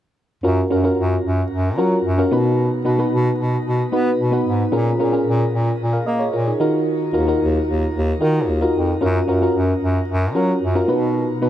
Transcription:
0.43 0.63 F#2 medium
0.43 0.66 C#4 medium
0.43 0.66 F4 medium
0.43 0.66 F#4 medium
0.43 0.66 A#4 medium
0.70 0.90 F#2 medium
0.70 0.82 C#4 medium
0.70 0.82 F4 medium
0.70 0.82 F#4 medium
0.70 0.82 A#4 medium
0.84 1.61 C#4 medium
0.84 1.61 F4 medium
0.84 1.61 F#4 medium
0.84 1.61 A#4 medium
0.98 1.17 F#2 medium
1.24 1.43 F#2 medium
1.51 1.79 F#2 medium
1.77 1.97 F#3 medium
1.77 2.11 C#4 medium
1.77 2.11 F4 medium
1.77 2.11 F#4 medium
1.77 2.11 A#4 medium
2.04 2.24 F#2 medium
2.18 2.31 C#4 medium
2.18 2.32 F4 medium
2.18 2.31 F#4 medium
2.18 2.32 A#4 medium
2.31 2.70 B2 medium
2.31 3.08 B2 medium
2.31 2.75 B3 medium
2.31 2.76 D#4 medium
2.31 2.76 F#4 medium
2.31 2.76 B4 medium
2.85 3.04 B2 medium
2.85 2.96 B3 medium
2.85 2.96 D#4 medium
2.85 2.96 F#4 medium
2.85 2.97 B4 medium
2.98 3.75 B3 medium
2.98 3.76 D#4 medium
2.98 3.76 F#4 medium
2.98 3.76 B4 medium
3.12 3.31 B2 loud
3.38 3.58 B2 medium
3.65 3.84 B2 medium
3.92 4.11 B3 medium
3.92 4.25 B3 medium
3.92 4.25 D#4 medium
3.92 4.25 F#4 medium
3.92 4.26 B4 medium
4.19 4.38 B2 medium
4.32 4.65 B3 medium
4.32 4.65 D#4 medium
4.32 4.66 F#4 medium
4.32 4.66 B4 medium
4.46 4.65 G#2 medium
4.72 4.92 A#2 medium
4.72 5.49 A#2 medium
4.72 4.94 C#4 medium
4.72 4.94 F4 medium
4.72 4.95 G#4 medium
4.72 4.95 A#4 medium
4.99 5.19 A#2 medium
4.99 5.10 C#4 medium
4.99 5.11 F4 medium
4.99 5.11 G#4 medium
4.99 5.11 A#4 medium
5.12 5.89 C#4 medium
5.12 5.80 F4 medium
5.12 5.80 G#4 medium
5.12 5.80 A#4 medium
5.26 5.46 A#2 medium
5.53 5.72 A#2 medium
5.80 5.99 A#2 medium
5.93 6.06 A#4 soft
5.93 6.06 F5 medium
6.06 6.26 A#3 medium
6.06 6.20 A#4 medium
6.06 6.19 D#5 medium
6.19 6.33 G#4 medium
6.19 6.32 C#5 medium
6.33 6.52 A#2 medium
6.33 6.46 F4 medium
6.33 6.46 A#4 medium
6.47 6.59 D#4 soft
6.47 6.72 G#4 medium
6.60 7.37 D#3 medium
6.60 7.04 D#4 medium
6.60 7.04 F4 medium
6.60 7.04 F#4 medium
6.60 7.04 A#4 medium
7.13 7.33 D#2 medium
7.13 7.24 D#4 medium
7.13 7.25 F4 medium
7.13 7.25 F#4 medium
7.13 7.25 A#4 medium
7.27 8.04 D#4 medium
7.27 8.04 F4 medium
7.27 8.05 F#4 medium
7.27 8.05 A#4 medium
7.40 7.60 D#2 medium
7.67 7.87 D#2 medium
7.94 8.13 D#2 medium
8.20 8.49 D#3 medium
8.20 8.54 D#4 medium
8.20 8.54 F4 medium
8.20 8.54 F#4 medium
8.20 8.54 A#4 medium
8.47 8.67 D#2 medium
8.61 8.94 D#4 medium
8.61 8.94 F4 medium
8.61 8.94 F#4 medium
8.61 8.95 A#4 medium
8.74 8.94 F2 medium
9.01 9.20 F#2 loud
9.01 9.23 C#4 medium
9.01 9.23 F4 medium
9.01 9.24 F#4 medium
9.01 9.24 A#4 medium
9.28 9.47 F#2 medium
9.28 9.39 C#4 medium
9.28 9.39 F4 medium
9.28 9.39 F#4 medium
9.28 9.39 A#4 medium
9.42 10.19 C#4 medium
9.42 10.19 F4 medium
9.42 10.19 F#4 medium
9.42 10.19 A#4 medium
9.54 9.74 F#2 medium
9.81 10.00 F#2 medium
10.08 10.36 F#2 loud
10.35 10.54 F#3 medium
10.35 10.68 C#4 medium
10.35 10.68 F4 medium
10.35 10.68 F#4 medium
10.35 10.69 A#4 medium
10.61 10.81 F#2 medium
10.75 10.89 C#4 medium
10.75 10.89 F4 medium
10.75 10.87 F#4 medium
10.75 10.89 A#4 medium
10.88 11.27 B2 medium
10.88 11.49 B2 medium
10.88 11.32 B3 medium
10.88 11.32 D#4 medium
10.88 11.33 F#4 medium
10.88 11.33 B4 medium
11.42 11.49 B2 medium
11.42 11.49 B3 medium
11.42 11.49 D#4 medium
11.42 11.49 F#4 medium
11.42 11.49 B4 medium

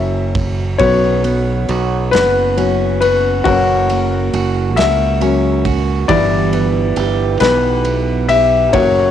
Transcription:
0.00 0.75 F#1 loud
0.00 0.75 F#3 medium
0.00 0.76 A#3 soft
0.00 0.76 C#4 medium
0.00 0.31 E5 medium
0.35 kick medium
0.35 ride medium
0.78 1.65 B1 loud
0.78 2.55 F#3 medium
0.78 1.23 B3 medium
0.78 2.56 B3 soft
0.78 2.56 C#4 medium
0.78 2.08 C#5 medium
0.78 kick loud
0.78 ride medium
1.24 2.12 B3 medium
1.24 ride soft
1.69 2.10 B1 loud
1.69 3.01 F#4 medium
1.69 ride soft
2.11 3.42 F#1 medium
2.11 3.45 B3 medium
2.11 2.97 B4 loud
2.11 snare loud
2.11 ride medium
2.57 2.97 F#3 soft
2.57 2.97 B3 soft
2.57 2.97 C#4 medium
2.57 5.21 C#4 medium
2.57 ride soft
3.01 4.33 F#4 medium
3.01 3.46 B4 medium
3.01 ride medium
3.44 4.29 F#1 medium
3.44 5.20 F#3 medium
3.44 3.88 A#3 medium
3.44 5.20 A#3 medium
3.44 5.21 C#4 medium
3.44 4.81 F#4 medium
3.44 kick loud
3.44 ride medium
3.89 4.76 A#3 medium
3.89 ride soft
4.33 4.77 F#1 medium
4.33 5.64 F#4 medium
4.33 ride medium
4.76 6.05 C#2 medium
4.76 6.18 A#3 medium
4.76 5.60 E5 medium
4.76 snare loud
4.76 ride medium
5.21 5.61 F#3 medium
5.21 5.61 A#3 soft
5.21 6.18 C#4 medium
5.21 5.61 C#4 medium
5.21 ride soft
5.65 6.18 F#4 medium
5.65 kick medium
5.65 ride medium
6.08 6.93 G1 medium
6.08 8.74 E3 medium
6.08 8.70 G3 medium
6.08 8.71 B3 medium
6.08 8.71 E4 medium
6.08 7.45 D5 loud
6.08 kick loud
6.08 ride medium
6.53 7.40 B3 medium
6.53 ride soft
6.96 7.38 G1 loud
6.96 8.28 G4 medium
6.96 ride soft
7.40 8.74 B1 loud
7.40 8.83 B3 medium
7.40 8.32 B4 medium
7.40 snare loud
7.40 ride medium
7.85 8.83 E4 medium
7.85 ride soft
8.29 8.83 G4 medium
8.29 8.75 E5 loud
8.29 ride medium
8.73 9.11 F#1 loud
8.73 9.11 F#3 medium
8.73 9.11 A#3 medium
8.73 9.11 C#4 medium
8.73 9.11 F#4 medium
8.73 9.11 C#5 loud
8.73 kick loud
8.73 ride medium

